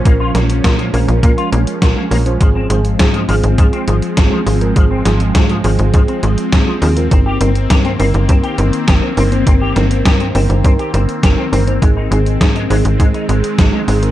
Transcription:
Already playing: F3 C#4
0.05 A#1 G#3 A#3 C#4 F4 A#4, kick, closed hi-hat
0.20 F4
0.35 A#1 A#3 C#4 F4 A#4, snare, closed hi-hat
0.50 closed hi-hat
0.64 A#2 C#4 F4 A#4, kick, snare, closed hi-hat
0.79 A#3, closed hi-hat
0.93 A#1 A#3 C#4 F4 A#4, open hi-hat
1.08 A#1 C#4 F4 A#4, closed hi-hat
1.23 A#2 A#3 C#4 F4 A#4, kick, closed hi-hat
1.38 F4, closed hi-hat
1.52 A#1 A#3 C#4 F4 A#4, closed hi-hat
1.67 closed hi-hat
1.82 A#1 C#4 F4 A#4, kick, snare, closed hi-hat
1.96 A#3
2.11 A#1 A#3 C#4 F4 A#4, open hi-hat
2.26 C#4 F4 C5, closed hi-hat
2.40 G#1 F3 C4 F4 G#4, kick, closed hi-hat
2.55 C4
2.70 G#1 F3 C4 F4 G#4, closed hi-hat
2.85 closed hi-hat
2.99 G#2 C4 F4 G#4, kick, snare, closed hi-hat
3.14 F3, closed hi-hat
3.29 G#1 F3 C4 F4 G#4, open hi-hat
3.44 G#1 C4 F4 G#4, closed hi-hat
3.58 G#2 F3 C4 F4 G#4, kick, closed hi-hat
3.73 C4, closed hi-hat
3.88 G#1 F3 C4 F4 G#4, closed hi-hat
4.02 closed hi-hat
4.17 G#1 C4 F4 G#4, kick, snare, closed hi-hat
4.32 F3
4.46 G#1 F3 C4 F4 G#4, open hi-hat
4.61 C4 F4 A#4, closed hi-hat
4.76 G#1 F3 C4 F4 G#4, kick, closed hi-hat
4.91 C4
5.05 G#1 F3 C4 F4 G#4, snare, closed hi-hat
5.20 closed hi-hat
5.35 G#2 C4 F4 G#4, kick, snare, closed hi-hat
5.49 F3, closed hi-hat
5.64 G#1 F3 C4 F4 G#4, open hi-hat
5.79 G#1 C4 F4 G#4, closed hi-hat
5.94 G#2 F3 C4 F4 G#4, kick, closed hi-hat
6.08 C4, closed hi-hat
6.23 G#1 F3 C4 F4 G#4, closed hi-hat
6.38 closed hi-hat
6.52 G#2 C4 F4 G#4, kick, snare, closed hi-hat
6.67 F3
6.82 D#2 F3 C4 F4 G#4, open hi-hat
6.97 C4 F4 A#4, closed hi-hat
7.11 G1 D#3 A#3 C4 D#4 A#4, kick, closed hi-hat
7.26 G4
7.41 G1 C4 D#4 A#4, closed hi-hat
7.55 closed hi-hat
7.70 G2 C4 D#4 G4 A#4, kick, snare, closed hi-hat
7.85 C4, closed hi-hat
7.99 G1 C4 D#4 A#4, open hi-hat
8.14 G1 C4 D#4 A#4, closed hi-hat
8.29 G2 C4 D#4 A#4, kick, closed hi-hat
8.43 G4, closed hi-hat
8.58 G1 C4 D#4 A#4, closed hi-hat
8.73 closed hi-hat
8.87 G1 C4 D#4 G4 A#4, kick, snare, closed hi-hat
9.02 C4
9.17 G1 C4 D#4 A#4, open hi-hat
9.32 C4 D#4 C5, closed hi-hat
9.47 G1 C4 D#4 A#4, kick, closed hi-hat
9.61 G4
9.76 G1 C4 D#4 A#4, snare, closed hi-hat
9.91 closed hi-hat
10.05 G2 C4 D#4 G4 A#4, kick, snare, closed hi-hat
10.20 C4, closed hi-hat
10.35 G1 C4 D#4 A#4, open hi-hat
10.50 G1 C4 D#4 A#4, closed hi-hat
10.64 G2 C4 D#4 A#4, kick, closed hi-hat
10.79 G4, closed hi-hat
10.94 G1 C4 D#4 A#4, closed hi-hat
11.09 closed hi-hat
11.23 G1 C4 D#4 G4 A#4, kick, snare, closed hi-hat
11.38 C4
11.52 G1 C4 D#4 A#4, open hi-hat
11.67 C4 D#4 C5, closed hi-hat
11.82 G#1 D#3 G#3 C4 D#4 G#4, kick, closed hi-hat
11.97 D#4
12.11 G#1 G#3 C4 D#4 G#4, closed hi-hat
12.26 closed hi-hat
12.41 G#2 C4 D#4 G#4, kick, snare, closed hi-hat
12.56 G#3, closed hi-hat
12.70 G#1 G#3 C4 D#4 G#4, open hi-hat
12.85 G#1 C4 D#4 G#4, closed hi-hat
13.00 G#2 G#3 C4 D#4 G#4, kick, closed hi-hat
13.14 D#4, closed hi-hat
13.29 G#1 G#3 C4 D#4 G#4, closed hi-hat
13.44 closed hi-hat
13.58 G#1 C4 D#4 G#4, kick, snare, closed hi-hat
13.73 G#3
13.88 G#1 G#3 C4 D#4 G#4, open hi-hat
14.03 C4 D#4 A#4, closed hi-hat

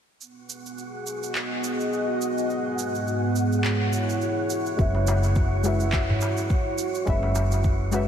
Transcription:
0.20 B3 F#4 F#5, shaker
0.45 G#4
0.49 shaker
0.65 F#4, shaker
0.78 shaker
1.07 shaker
1.15 D#5
1.23 shaker
1.35 clap, shaker
1.64 shaker
1.80 shaker
1.93 shaker
2.21 shaker
2.38 shaker
2.49 G#2, shaker
2.79 shaker
2.95 shaker
3.07 shaker
3.36 shaker
3.52 E4 C#5, shaker
3.64 clap, shaker
3.93 shaker
4.09 shaker
4.22 shaker
4.50 shaker
4.66 shaker
4.77 F#1 G#3 C#4 F#4 B4, kick, shaker
4.81 E5
4.95 darbuka ka
5.07 darbuka tek, shaker
5.23 darbuka ka, shaker
5.33 F#4, kick, shaker
5.63 G#3 C#4 F#4 B4, darbuka ka, shaker
5.67 E5
5.80 shaker
5.92 kick, clap, shaker
6.10 darbuka dum
6.21 darbuka ka, darbuka tek, shaker
6.37 shaker
6.50 kick, shaker
6.78 shaker
6.95 shaker
7.05 F#1 G#3 C#4 F#4 B4 E5, kick, shaker
7.23 darbuka ka
7.35 darbuka tek, shaker
7.52 darbuka ka, shaker
7.64 kick, shaker
7.91 G#3 C#4 F#4 B4, darbuka ka, darbuka tek, shaker
7.95 E5

